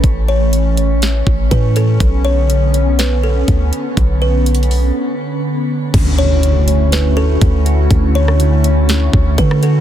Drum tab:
CC |------------------------------------------------|------------------------------------------------|------------------------------------------------|x-----------------------------------------------|
HH |x-----------x-----x-----x-----------x-----x-----|x-----------x-----x-----x-----------x-----x-----|x-----------x-x-x-o-----------------------------|x-----------x-----x-----x-----------x-----x-----|
SD |------------------------o-----------------------|------------------------o-----------------------|------------------------------------------------|------------------------o-----------------------|
BD |o-----------------------------o-----o-----------|o-----------------------------------o-----------|o-----------------------------------------------|o-----------------------------------o-----------|

CC |------------------------------------------------|
HH |x-----------x-----x-----x-----------x-----x-----|
SD |---------r--------------o--------------r--------|
BD |o-----------------------------o-----o-----------|